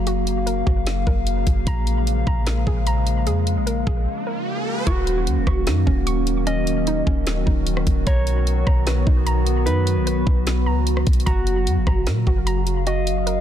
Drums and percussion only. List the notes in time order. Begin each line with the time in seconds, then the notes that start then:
0.07 closed hi-hat
0.27 closed hi-hat
0.47 closed hi-hat
0.67 kick
0.87 snare, closed hi-hat
1.07 kick
1.27 closed hi-hat
1.47 kick, closed hi-hat
1.67 kick, closed hi-hat
1.87 closed hi-hat
2.07 closed hi-hat
2.27 kick
2.47 snare, closed hi-hat
2.67 kick
2.87 closed hi-hat
3.07 closed hi-hat
3.27 closed hi-hat
3.47 closed hi-hat
3.67 closed hi-hat
3.87 kick
4.87 kick, closed hi-hat
5.07 closed hi-hat
5.27 closed hi-hat
5.47 kick, cross-stick
5.67 snare, closed hi-hat
5.87 kick
6.07 closed hi-hat
6.27 closed hi-hat
6.47 closed hi-hat
6.67 closed hi-hat
6.87 closed hi-hat
7.07 kick
7.27 snare, closed hi-hat
7.47 kick
7.67 closed hi-hat
7.77 cross-stick
7.87 kick, closed hi-hat
8.07 kick, closed hi-hat
8.27 closed hi-hat
8.47 closed hi-hat
8.67 kick, cross-stick
8.87 snare, closed hi-hat
9.07 kick
9.27 closed hi-hat
9.47 closed hi-hat
9.67 closed hi-hat
9.87 closed hi-hat
10.07 closed hi-hat
10.27 kick
10.47 snare, closed hi-hat
10.87 closed hi-hat
10.97 cross-stick
11.07 kick, closed hi-hat
11.13 closed hi-hat
11.20 closed hi-hat
11.27 kick, closed hi-hat
11.47 closed hi-hat
11.67 closed hi-hat
11.87 kick, cross-stick
12.07 snare, closed hi-hat
12.27 kick
12.47 closed hi-hat
12.67 closed hi-hat
12.87 closed hi-hat
13.07 closed hi-hat
13.27 closed hi-hat